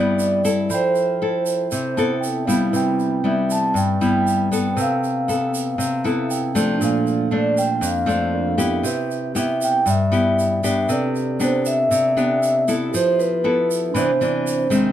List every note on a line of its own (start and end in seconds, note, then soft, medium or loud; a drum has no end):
0.00 0.68 G2 medium
0.00 0.41 G3 medium
0.00 0.41 B3 medium
0.00 0.66 C4 medium
0.00 0.41 E4 medium
0.00 0.64 E4 medium
0.00 0.65 B4 medium
0.00 0.75 D5 medium
0.00 0.67 G5 medium
0.19 shaker medium
0.45 1.17 E4 medium
0.45 1.17 A4 medium
0.45 shaker medium
0.69 1.69 F3 medium
0.69 2.69 A4 soft
0.69 2.71 E5 soft
0.69 2.70 B5 soft
0.69 shaker medium
0.74 2.21 C5 medium
0.74 2.20 G5 medium
0.95 shaker soft
1.22 1.94 E4 soft
1.22 1.94 A4 medium
1.46 shaker medium
1.71 2.71 C3 medium
1.71 shaker medium
1.97 2.44 B3 medium
1.97 2.44 E4 medium
1.97 2.45 A4 medium
1.97 2.21 A5 medium
1.97 shaker soft
2.21 2.45 G5 medium
2.21 shaker medium
2.47 3.20 G3 medium
2.47 3.20 B3 medium
2.47 3.20 E4 medium
2.47 2.71 F5 medium
2.47 shaker medium
2.71 3.73 C3 medium
2.71 4.74 C4 medium
2.71 4.72 E4 medium
2.71 4.73 B4 medium
2.71 shaker medium
2.76 4.75 G5 medium
3.00 shaker soft
3.24 3.97 G3 soft
3.24 3.97 B3 medium
3.24 3.97 E4 medium
3.24 3.52 E5 medium
3.50 3.77 A5 medium
3.50 shaker medium
3.74 4.74 G2 medium
3.74 4.74 G5 medium
3.74 shaker medium
4.01 4.48 G3 medium
4.01 4.48 B3 medium
4.01 4.48 E4 medium
4.01 shaker soft
4.27 shaker soft
4.52 5.24 B3 medium
4.52 5.25 A4 medium
4.52 shaker medium
4.77 5.76 C3 medium
4.77 6.77 A4 soft
4.77 6.78 B4 soft
4.77 6.78 E6 soft
4.77 shaker medium
4.81 6.28 F5 medium
4.81 6.30 G5 medium
5.04 shaker soft
5.28 5.79 B3 soft
5.28 5.79 A4 medium
5.28 shaker medium
5.54 shaker medium
5.78 6.78 C3 medium
5.78 shaker medium
6.04 6.51 B3 medium
6.04 6.52 E4 medium
6.04 6.52 A4 medium
6.04 6.28 F5 medium
6.04 shaker soft
6.31 6.54 G5 soft
6.31 shaker medium
6.55 7.28 F3 medium
6.55 7.28 A3 medium
6.55 7.28 D4 medium
6.55 6.80 A5 medium
6.55 shaker medium
6.78 7.80 A#2 medium
6.78 8.29 D4 medium
6.78 8.30 A4 medium
6.78 shaker medium
6.82 8.32 A#3 medium
6.82 8.33 F5 medium
7.07 shaker soft
7.31 7.82 F3 soft
7.31 7.82 A3 soft
7.31 7.83 D4 medium
7.31 7.59 D5 medium
7.58 7.84 G5 medium
7.58 shaker medium
7.81 8.81 F2 medium
7.81 shaker medium
7.85 8.82 F5 medium
8.06 8.54 F3 medium
8.06 8.54 A3 medium
8.06 8.55 D4 medium
8.06 shaker soft
8.32 8.84 D4 soft
8.32 8.85 A4 soft
8.32 8.85 A#4 soft
8.32 8.86 D5 soft
8.58 9.31 B3 medium
8.58 9.31 E4 medium
8.58 9.31 G4 medium
8.58 shaker medium
8.83 9.84 C3 medium
8.83 10.84 G4 medium
8.83 10.86 B4 medium
8.83 shaker medium
8.88 10.86 E5 medium
9.11 shaker soft
9.35 9.86 B3 medium
9.35 9.86 E4 soft
9.35 9.87 G4 medium
9.35 shaker medium
9.39 9.64 E5 medium
9.61 9.89 G5 loud
9.61 shaker medium
9.86 10.86 G2 medium
9.86 shaker medium
9.90 10.86 E5 medium
10.12 10.59 B3 medium
10.12 10.59 E4 medium
10.12 10.60 G4 medium
10.12 shaker soft
10.39 shaker soft
10.63 11.36 B3 medium
10.63 11.36 D4 medium
10.63 11.36 G4 medium
10.63 shaker medium
10.88 11.88 C3 medium
10.88 12.89 G4 medium
10.88 12.89 A4 medium
10.88 12.90 B4 soft
10.88 shaker medium
10.93 12.91 D5 medium
11.16 shaker soft
11.40 12.12 B3 medium
11.40 12.12 D4 medium
11.40 12.13 G4 medium
11.40 11.65 C5 medium
11.40 shaker medium
11.66 12.17 E5 loud
11.66 shaker medium
11.91 12.90 C3 medium
11.91 shaker medium
12.17 12.64 B3 medium
12.17 12.64 D4 medium
12.17 12.64 G4 medium
12.17 12.65 E5 medium
12.17 shaker soft
12.43 shaker soft
12.68 13.40 B3 medium
12.68 13.40 E4 medium
12.68 13.41 A4 medium
12.68 shaker medium
12.89 13.92 G4 soft
12.89 13.93 A4 soft
12.89 13.91 E5 medium
12.93 13.93 F3 medium
12.93 13.94 F4 medium
12.93 13.93 B4 soft
12.93 13.20 C5 medium
12.93 shaker medium
13.19 13.91 B4 loud
13.19 shaker soft
13.44 13.93 B3 soft
13.44 13.93 E4 medium
13.44 13.93 A4 medium
13.71 shaker medium
13.92 14.92 C3 medium
13.92 14.10 E3 medium
13.92 14.10 B3 medium
13.92 14.92 D4 medium
13.92 14.10 D4 medium
13.92 14.92 B5 soft
13.96 14.92 C4 soft
13.96 14.68 C5 medium
13.96 14.92 E5 medium
13.96 shaker medium
14.21 14.68 E3 medium
14.21 14.68 D4 medium
14.21 shaker soft
14.47 shaker medium
14.70 14.92 D#3 medium
14.70 14.92 G#3 medium
14.70 14.92 C4 medium
14.70 shaker medium